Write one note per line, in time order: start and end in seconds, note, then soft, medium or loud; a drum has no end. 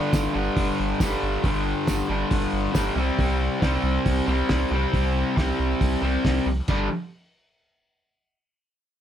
0.00 0.36 G2 medium
0.00 0.34 D3 medium
0.00 0.32 G3 medium
0.13 0.28 G1 medium
0.13 kick loud
0.13 snare loud
0.13 open hi-hat medium
0.13 tambourine medium
0.33 0.50 G1 medium
0.33 0.98 G2 medium
0.33 0.99 D3 medium
0.33 1.02 G3 medium
0.56 0.71 G1 medium
0.56 kick loud
0.56 open hi-hat medium
0.80 0.94 G1 medium
0.99 1.16 G1 loud
0.99 1.42 G2 medium
0.99 1.43 D3 medium
0.99 1.47 G3 medium
0.99 kick loud
0.99 snare loud
0.99 open hi-hat medium
0.99 tambourine medium
1.23 1.38 G1 medium
1.44 1.74 G1 medium
1.44 2.08 G2 medium
1.44 2.09 D3 medium
1.44 2.07 G3 loud
1.44 kick loud
1.44 open hi-hat medium
1.87 2.03 G1 medium
1.87 kick loud
1.87 snare loud
1.87 open hi-hat medium
1.87 tambourine medium
2.08 2.24 G1 loud
2.08 2.71 G2 medium
2.08 2.73 D3 medium
2.08 2.76 G3 medium
2.31 2.46 G1 medium
2.31 kick loud
2.31 open hi-hat medium
2.53 2.68 G1 medium
2.73 2.90 G1 medium
2.73 2.94 G2 medium
2.73 2.95 D3 medium
2.73 2.97 G3 medium
2.73 kick loud
2.73 snare loud
2.73 open hi-hat medium
2.73 tambourine medium
2.95 3.11 C2 medium
2.95 3.60 C3 medium
2.95 3.62 G3 loud
2.95 3.64 C4 medium
3.19 3.49 C2 loud
3.19 kick loud
3.19 open hi-hat medium
3.60 3.78 C2 medium
3.60 4.26 C3 medium
3.60 4.28 G3 medium
3.60 kick loud
3.60 snare loud
3.60 open hi-hat medium
3.64 4.26 C4 medium
3.83 3.99 C2 medium
4.06 4.21 C2 medium
4.06 kick loud
4.06 open hi-hat medium
4.27 4.43 C2 medium
4.27 4.70 C3 medium
4.27 4.72 G3 medium
4.27 4.70 C4 medium
4.49 4.65 C2 loud
4.49 kick loud
4.49 snare loud
4.49 open hi-hat medium
4.71 4.86 C2 medium
4.71 5.35 C3 medium
4.71 5.37 G3 medium
4.71 5.38 C4 medium
4.94 5.24 C2 medium
4.94 kick loud
4.94 open hi-hat soft
5.36 5.52 C2 medium
5.36 6.01 C3 medium
5.36 6.02 G3 medium
5.36 6.00 C4 medium
5.36 kick loud
5.36 snare loud
5.36 open hi-hat medium
5.59 5.75 C2 medium
5.81 5.96 C2 medium
5.81 kick loud
5.81 open hi-hat medium
6.02 6.18 C2 medium
6.02 6.47 C3 medium
6.02 6.46 G3 medium
6.02 6.45 C4 medium
6.25 6.40 C2 medium
6.25 kick loud
6.25 snare loud
6.25 open hi-hat medium
6.46 6.62 C2 medium
6.68 6.89 G1 medium
6.68 6.86 G2 medium
6.68 6.87 D3 medium
6.68 6.87 G3 medium
6.68 kick medium
6.68 crash medium